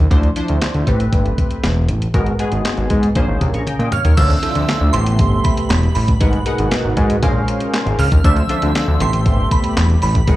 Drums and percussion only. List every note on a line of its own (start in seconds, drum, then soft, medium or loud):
0.11 kick loud
0.11 closed hi-hat medium
0.23 closed hi-hat soft
0.36 closed hi-hat medium
0.48 closed hi-hat soft
0.62 snare loud
0.62 clap medium
0.62 closed hi-hat medium
0.74 closed hi-hat soft
0.87 kick medium
0.87 closed hi-hat medium
1.00 closed hi-hat medium
1.13 kick loud
1.13 closed hi-hat medium
1.26 closed hi-hat soft
1.38 kick medium
1.38 closed hi-hat medium
1.51 closed hi-hat soft
1.64 snare loud
1.64 clap medium
1.64 closed hi-hat medium
1.89 closed hi-hat medium
2.02 closed hi-hat medium
2.14 kick medium
2.14 closed hi-hat medium
2.26 closed hi-hat soft
2.39 closed hi-hat medium
2.52 closed hi-hat soft
2.65 snare loud
2.65 clap medium
2.65 closed hi-hat medium
2.77 closed hi-hat soft
2.90 kick medium
2.90 closed hi-hat medium
3.03 closed hi-hat medium
3.15 kick loud
3.15 closed hi-hat medium
3.41 kick medium
3.41 closed hi-hat medium
3.54 closed hi-hat soft
3.67 closed hi-hat medium
3.67 high tom medium
3.80 closed hi-hat soft
3.92 closed hi-hat medium
3.92 mid tom medium
4.05 closed hi-hat medium
4.05 floor tom medium
4.17 kick loud
4.17 closed hi-hat loud
4.17 crash medium
4.30 closed hi-hat soft
4.43 closed hi-hat medium
4.55 closed hi-hat medium
4.69 snare loud
4.69 clap loud
4.69 closed hi-hat medium
4.94 closed hi-hat medium
5.06 closed hi-hat medium
5.19 kick loud
5.19 closed hi-hat medium
5.45 kick loud
5.45 closed hi-hat loud
5.57 closed hi-hat medium
5.70 snare loud
5.70 clap loud
5.70 closed hi-hat medium
5.83 closed hi-hat soft
5.95 open hi-hat medium
6.08 kick loud
6.08 closed hi-hat medium
6.21 kick loud
6.21 closed hi-hat loud
6.33 closed hi-hat soft
6.46 closed hi-hat medium
6.58 closed hi-hat medium
6.71 snare loud
6.71 clap loud
6.71 closed hi-hat loud
6.97 kick loud
6.97 closed hi-hat medium
7.10 closed hi-hat medium
7.23 kick loud
7.23 closed hi-hat medium
7.48 closed hi-hat medium
7.60 closed hi-hat medium
7.74 snare loud
7.74 clap loud
7.74 closed hi-hat medium
7.87 closed hi-hat soft
7.99 open hi-hat medium
8.12 kick loud
8.12 closed hi-hat medium
8.24 kick loud
8.24 closed hi-hat loud
8.36 closed hi-hat soft
8.49 closed hi-hat medium
8.62 closed hi-hat medium
8.75 snare loud
8.75 clap loud
8.75 closed hi-hat loud
9.00 closed hi-hat medium
9.13 closed hi-hat medium
9.26 kick loud
9.26 closed hi-hat medium
9.51 kick loud
9.51 closed hi-hat loud
9.64 closed hi-hat medium
9.77 snare loud
9.77 clap loud
9.77 closed hi-hat medium
9.90 closed hi-hat soft
10.02 open hi-hat medium
10.15 kick loud
10.15 closed hi-hat medium
10.28 kick loud
10.28 closed hi-hat loud